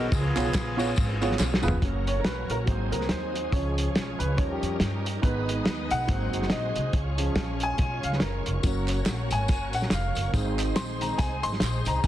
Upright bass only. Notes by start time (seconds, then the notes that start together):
0.12 C#2
0.36 B1
0.98 G#1
1.39 B1
1.63 F1
1.82 F#1
2.48 A#1
2.67 G#1
2.91 C2
3.09 D#2
3.53 C#2
3.94 B1
4.20 C#2
4.62 F2
4.80 G2
5.23 G#1
5.65 D#2
5.91 B1
6.09 G#1
6.33 F#1
6.76 C2
6.94 C#2
7.36 A#1
7.79 B1
8.04 C#2
8.21 F#1
8.47 F1
9.07 A#1
9.30 G#1
9.49 F#1
9.74 A#1
9.91 F1
10.16 F#1
10.33 G#1
11.19 C2
11.44 G#1
11.61 A#1
11.87 C2
12.04 C#2